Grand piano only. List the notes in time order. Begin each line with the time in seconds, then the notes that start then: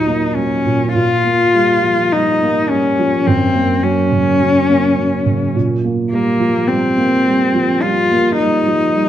Already playing: D#2 A#2 F#3 A#3
0.07 A#3
0.36 F#3
0.65 A#2
0.95 A#2
1.24 A#3
1.54 G3
1.83 F3
2.13 G3
2.42 A#3
2.71 G3
2.99 F3
3.27 F#2
3.55 A#3
3.83 F#3
4.12 C#3
4.40 F#3
4.69 A#3
4.98 F#3
5.26 C#3
5.55 A#2
5.84 A#3
6.12 G3
6.40 F3
6.69 G3
6.97 A#3
7.26 G3
7.54 F3
7.83 G3
8.11 A#3
8.39 G3
8.67 F3
8.94 G3